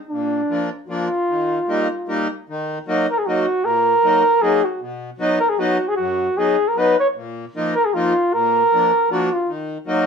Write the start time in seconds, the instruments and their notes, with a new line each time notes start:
0.09 accordion A#2, flugelhorn D4
0.49 accordion F3 A#3 D4
0.88 accordion F3 A#3 D4, flugelhorn F4
1.29 accordion D#3
1.68 accordion G3 A#3 D#4
2.08 accordion G3 A#3 D#4
2.49 accordion D#3
2.87 accordion F#3 A#3 D#4
3.11 flugelhorn A#4
3.18 flugelhorn G#4
3.26 accordion F#3 A#3 D#4, flugelhorn F#4
3.65 accordion A#2, flugelhorn A#4
4.03 accordion F#3 A#3 D#4
4.42 accordion F#3 A#3 D#4, flugelhorn G#4
4.64 flugelhorn F#4
4.81 accordion B2
5.19 accordion F#3 B3 D#4
5.40 flugelhorn A#4
5.49 flugelhorn G#4
5.58 accordion F#3 B3 D#4, flugelhorn F#4
5.89 flugelhorn G#4
5.97 accordion F#2, flugelhorn F#4
6.37 accordion F#3 B3 D#4, flugelhorn G#4
6.68 flugelhorn A#4
6.76 accordion F#3 B3 D#4, flugelhorn B4
7.00 flugelhorn C#5
7.15 accordion A#2
7.55 accordion F3 A#3 D#4
7.75 flugelhorn A#4
7.85 flugelhorn G#4
7.94 accordion F3 A#3 D#4, flugelhorn F4
8.33 accordion A#2, flugelhorn A#4
8.73 accordion F3 A#3 D4
9.10 accordion F3 A#3 D4, flugelhorn F#4
9.33 flugelhorn F4
9.48 accordion D#3
9.86 accordion F#3 A#3 D#4